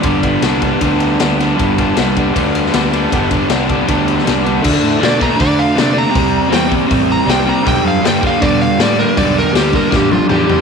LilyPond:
<<
  \new Staff \with { instrumentName = "Electric slide guitar" } { \time 4/4 \key g \major \tempo 4 = 158 r1 | r1 | r1 | r4 d''8 bes''8 d''8 f''8 d''8 bes''8~ |
bes''4 g''8 r4 bes''8 g''8 bes''8 | g''8 f''8 g''8 f''8 d''8 f''8 d''8 bes'8 | d''8 bes'8 g'8 bes'8 g'8 f'8 g'4 | }
  \new Staff \with { instrumentName = "Overdriven electric guitar" } { \clef bass \time 4/4 \key g \major <g, d g b d'>8 <g b d'>8 <d g b d'>8 <g b d'>8 <g, d g b d'>4 <d g b d'>8 <g b d'>8 | <g, d g b d'>8 <g b d'>8 <d g b d'>8 <g b d'>8 <g, d g b d'>4 <d g b d'>8 <g b d'>8 | <g, d g b d'>8 <g b d'>8 <d g b d'>8 <g b d'>8 <g, d g b d'>4 <d g b d'>8 <g b d'>8 | <d a d'>4 <d a d'>8 <d a d'>8 <d a d'>4 <d a d'>8 <d a d'>8 |
<c g c'>4 <c g c'>8 <c g c'>8 <c g c'>4 <c g c'>8 <c g c'>8 | <g, d g>4 <g, d g>8 <g, d g>8 <g, d g>4 <g, d g>8 <g, d g>8 | <g, d g>4 <g, d g>8 <g, d g>8 <g, d g>4 <g, d g>8 <g, d g>8 | }
  \new Staff \with { instrumentName = "Picked electric bass" } { \clef bass \time 4/4 \key g \major g,,4 c,4 d,4 d,4 | g,,4 c,4 d,4 d,4 | g,,4 c,4 d,4 c,4 | d,8 a,8 b,4 d4 c4 |
c,4 e,4 a,,4 c,4 | b,,8 fis,8 g,4 b,4 a,4 | b,,4 d,4 a,,4 e,4 | }
  \new DrumStaff \with { instrumentName = "Drums" } \drummode { \time 4/4 <bd cymr>8 <bd cymr>8 <cymr sn>8 <bd cymr>8 <bd cymr>8 cymr8 <cymr sn>8 <cymr sn>8 | <bd cymr>8 <bd cymr>8 <cymr sn>8 <bd cymr>8 <bd cymr>8 cymr16 sn16 <cymr sn>8 cymr8 | <bd cymr>8 <bd cymr>8 <cymr sn>8 <bd cymr>8 <bd cymr>8 cymr16 sn16 <cymr sn>8 cymr8 | <cymc bd>4 <hho sn>8 bd8 <hho bd>4 <hho sn>4 |
<hho bd>4 <hho sn>8 bd8 <hho bd>4 <hho sn>4 | <hho bd>4 <hho sn>8 bd8 <hho bd>4 <hho sn>4 | <hho bd>4 <hho sn>8 bd8 <bd sn>8 tommh8 toml8 tomfh8 | }
>>